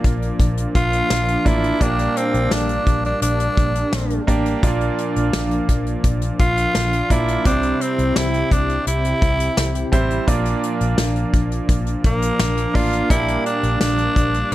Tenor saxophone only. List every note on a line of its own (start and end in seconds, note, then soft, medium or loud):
0.76 1.48 F4 loud
1.47 1.83 E4 medium
1.82 2.18 D4 loud
2.17 2.54 C4 medium
2.53 3.05 D4 medium
3.06 3.22 D4 medium
3.22 4.24 D4 medium
6.40 7.13 F4 loud
7.11 7.46 E4 medium
7.46 7.83 D4 medium
7.81 8.19 C4 medium
8.17 8.54 E4 medium
8.53 8.87 D4 medium
8.88 9.89 E4 medium
12.06 12.77 A#3 medium
12.75 13.10 F4 medium
13.11 13.43 E4 loud
13.46 13.79 D4 medium
13.81 14.54 D4 loud